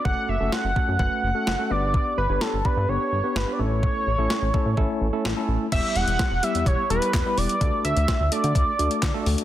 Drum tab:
CC |----------------|----------------|----------------|x---------------|
HH |----------------|----------------|----------------|x-xxx-xxx-xxx-ox|
CP |----------------|----------------|----------------|------------x---|
SD |----o-------o---|----o-------o---|----o-------o---|----o-------o---|
BD |o-----o-o-------|o-----o---------|o-----o-o-------|o---o---o---o---|

CC |----------------|
HH |x-xxx-xxx-xxx-ox|
CP |------------x---|
SD |----o-------o---|
BD |o---o---o---o---|